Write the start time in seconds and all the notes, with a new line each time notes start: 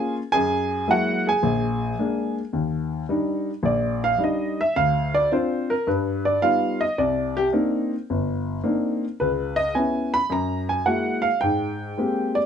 Already playing: A#3 C#4 F4 G#4 G#5
0.32 F#2 G#4 G#5
0.88 F#3 G#3 A#3 E4 F#4 F#5
1.27 G#4 G#5
1.43 A#1
1.99 G#3 A#3 D4
2.53 D#2
3.09 G3 D4 D#4
3.63 A#1 D5
4.04 F5
4.18 G3 D4 D#4
4.24 D#5
4.61 E5
4.76 D2 F5
5.15 D5
5.32 C4 D4 F4 C5
5.70 A#4
5.87 G2 B4
6.25 D5
6.42 G3 B3 D#4 F4 F5
6.81 D#5
6.98 C2 D5
7.37 G4
7.53 A#3 C4 D4 D#4
8.10 G1
8.64 A#3 C4 D4 D#4
9.20 C#2 B4
9.56 D#5
9.75 B3 C#4 E4 G#5
10.14 B5
10.30 F#2 A#5
10.69 G#5
10.86 G#3 A#3 E4 F#4 F#5
11.22 F5
11.41 G#2 G5
11.97 G#3 A#3 C4 G4
12.35 D5